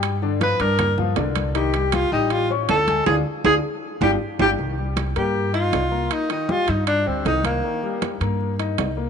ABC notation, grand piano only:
X:1
M:4/4
L:1/8
Q:1/4=158
K:Cm
V:1 name="Grand piano"
[G,Gg] [D,Dd] [F,Ff] [Ddd']2 [F,Ff] [D,Dd]2 | [E,Ee] [G,Gg]2 [G,Gg]2 [^C^c^c']2 [A,Aa] | [DFA] z [DFA] z2 [DFG] z [DFG] | [E,E] [G,G]2 [B,B]2 [Ee]2 [B,B]- |
[B,B] [E,E] [G,G] [Ee]2 [G,G] [E,E]2 | [E,E] [G,G]2 [B,B]2 [Ee]2 [B,B] |]